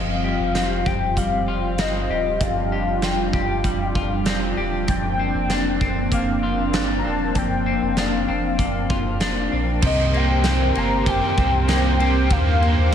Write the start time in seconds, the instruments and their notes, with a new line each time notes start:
Already playing: sub bass F1, clean electric guitar F2 G3 C4 F4 G4, analog synth pad G3 C4 F4, soft synth lead F5
0.24 clean electric guitar G4
0.39 sub bass F1
0.55 clean electric guitar C4, snare, closed hi-hat
0.86 sub bass F1, clean electric guitar G4, soft synth lead G5, kick
1.17 clean electric guitar G3, soft synth lead F5, kick, closed hi-hat
1.48 clean electric guitar F4
1.78 sub bass G1, clean electric guitar C4, soft synth lead D#5, snare, closed hi-hat
2.09 sub bass D#1, clean electric guitar G4
2.40 sub bass F1, clean electric guitar F2, analog synth pad D4, soft synth lead F5, kick, closed hi-hat
2.72 clean electric guitar G4
2.86 sub bass F1
3.02 clean electric guitar C4, soft synth lead G5, snare, closed hi-hat
3.33 sub bass F1, clean electric guitar G4, kick
3.64 clean electric guitar G3, kick, closed hi-hat
3.95 clean electric guitar F4, kick
4.26 clean electric guitar C4, snare, closed hi-hat
4.57 sub bass D#1, clean electric guitar G4
4.88 sub bass F1, clean electric guitar F2, analog synth pad A#3 C4, soft synth lead G5, kick, closed hi-hat
5.19 clean electric guitar C4
5.34 sub bass F1
5.50 clean electric guitar D4, snare, closed hi-hat
5.81 sub bass F1, clean electric guitar C4, kick
6.12 clean electric guitar A#3, soft synth lead F5, kick, closed hi-hat
6.43 clean electric guitar F4
6.73 sub bass G1, clean electric guitar D4, snare, closed hi-hat
6.98 soft synth lead A#5
7.05 sub bass D#1, clean electric guitar C4, soft synth lead A5
7.35 sub bass F1, clean electric guitar F2, soft synth lead G5, kick, closed hi-hat
7.66 clean electric guitar C4
7.82 sub bass F1
7.97 clean electric guitar D4, soft synth lead F5, snare, closed hi-hat
8.28 sub bass F1, clean electric guitar C4
8.59 clean electric guitar A#3, kick, closed hi-hat
8.90 clean electric guitar F4, kick
9.20 clean electric guitar D4, snare, closed hi-hat
9.52 sub bass A#1, clean electric guitar C4
9.82 sub bass C2, overdriven electric guitar C3 D#3 A#3 C4 G4, clean electric guitar C3, analog synth pad C4 G4 A#4 C5, soft synth lead D#5, kick, crash
10.13 clean electric guitar A#3, overdriven electric guitar A#3 C4 G4, soft synth lead G5, ride
10.44 overdriven electric guitar D#3 A#3 C4 G4, clean electric guitar C4, snare, ride, tambourine
10.75 sub bass G1, clean electric guitar A#3, overdriven electric guitar A#3 C4 G4, soft synth lead A#5, ride
11.06 overdriven electric guitar C3 D#3 A#3 C4 G4, clean electric guitar G4, soft synth lead G5, kick, ride
11.37 sub bass C2, overdriven electric guitar A#3 C4 G4, clean electric guitar C4, kick, ride
11.68 overdriven electric guitar D#3 A#3 C4 G4, clean electric guitar A#3, snare, ride, tambourine
11.99 overdriven electric guitar A#3 C4 G4, clean electric guitar C4, soft synth lead G5, ride
12.30 sub bass D#2, overdriven electric guitar D#3 A#3 D4 G4, analog synth pad A#3, soft synth lead F5, kick, ride
12.61 clean electric guitar A#3, overdriven electric guitar A#3 D4 G4, ride
12.78 sub bass D#2